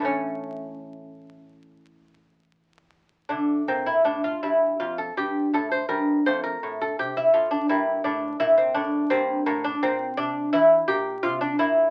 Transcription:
<<
  \new Staff \with { instrumentName = "Lute" } { \time 4/4 \key d \minor \tempo 4 = 82 cis'2.~ cis'8 r8 | d'8 c'16 e'16 d'16 f'16 e'8 f'16 a'16 g'8 a'16 c''16 bes'8 | c''16 bes'8 a'16 g'16 e'16 f'16 d'16 e'8 d'8 e'16 c'16 d'8 | c'8 bes16 d'16 c'8 d'8 e'8 g'8 f'16 d'16 e'8 | }
  \new Staff \with { instrumentName = "Lute" } { \clef bass \time 4/4 \key d \minor << { r1 | a1 | a2 bes2 | bes1 | } \\ { <a, e a>1 | d8 bes,8 a,8 g,8 f,8 g,8 a,8 g,8 | f,8 a,8 c8 a,8 g,8 a,8 bes,8 a,8 | g,8 a,8 bes,8 c8 e8 bes,8 c8 bes,8 | } >> }
>>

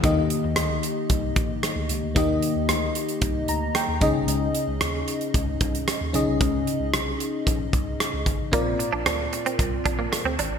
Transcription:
<<
  \new Staff \with { instrumentName = "FM electric piano" } { \time 4/4 \key ees \lydian \tempo 4 = 113 << { r1 | r2 r8 bes''8 g''8 ees''8 | r1 | r1 |
r1 | } \\ { <bes ees' g' ees''>1 | <bes ees' g' ees''>2.~ <bes ees' g' ees''>8 <des' ees' aes' ees''>8~ | <des' ees' aes' ees''>2.~ <des' ees' aes' ees''>8 <des' ees' aes' ees''>8~ | <des' ees' aes' ees''>2.~ <des' ees' aes' ees''>8 r8 |
<c' f' bes' d''>1 | } >> }
  \new Staff \with { instrumentName = "FM electric piano" } { \clef bass \time 4/4 \key ees \lydian ees4. r2 r8 | ees4. r2 des8~ | des4 r2 r8 des8~ | des4 r2. |
bes,4. r2 r8 | }
  \new Staff \with { instrumentName = "Clean electric guitar" } { \time 4/4 \key ees \lydian r1 | r1 | r1 | r1 |
bes16 r8 d'16 c'16 r8 c'16 r8 d'16 bes16 r16 c'16 d'16 r16 | }
  \new Staff \with { instrumentName = "Tine electric piano" } { \clef bass \time 4/4 \key ees \lydian ees,8 r16 ees,16 d,8 r8 c,8 bes,,8 r16 d,16 des,16 d,16 | ees,8 r16 ees,16 d,8 r8 c,8 d,8 r16 ees,16 des,16 c,16 | des,8 r16 des,16 ees,8 r8 des,8 c,8 r16 ees,16 ces,16 c,16 | des,8 r16 des,16 c,8 r8 bes,,8 c,8 r16 des,16 aes,,16 a,,16 |
bes,,8 r16 bes,,16 d,8 r8 c,8 bes,,8 r16 d,16 aes,,16 a,,16 | }
  \new DrumStaff \with { instrumentName = "Drums" } \drummode { \time 4/4 <hh bd>8 hh8 <hh ss>8 hh8 <hh bd>8 <hh bd>8 <hh ss>8 hh8 | <hh bd>8 hh8 <hh ss>8 hh16 hh16 <hh bd>8 hh8 <hh ss>8 <hh bd>8 | hh8 hh8 <hh ss>8 hh16 hh16 <hh bd>8 <hh bd>16 hh16 <hh ss>8 hh8 | <hh bd>8 hh8 <hh ss>8 hh8 <hh bd>8 <hh bd>8 <hh ss>8 <hh bd>8 |
<hh bd>8 hh8 <hh ss>8 hh16 hh16 <hh bd>8 <hh bd>8 <hh ss>8 hh8 | }
>>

